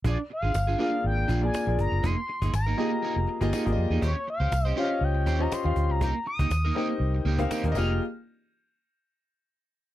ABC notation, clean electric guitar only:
X:1
M:4/4
L:1/16
Q:"Swing 16ths" 1/4=121
K:Fm
V:1 name="Clean electric guitar"
[=DFA] z2 [DFA] z [DFA] [DFA] z3 [DFA] z4 z | [B,EA] z2 [B,EA] z [B,EB] [B,EA] z [B,EA] z2 [B,EA] [B,EA] z2 [B,EA] | [DGc] z2 [DGc] z [DGc] [DGc] z3 [DGc] z4 z | [B,EG] z2 [B,EG] z [B,EB] [B,EG] z3 [B,EG] z [B,EG] z [B,EA] z |
z16 |]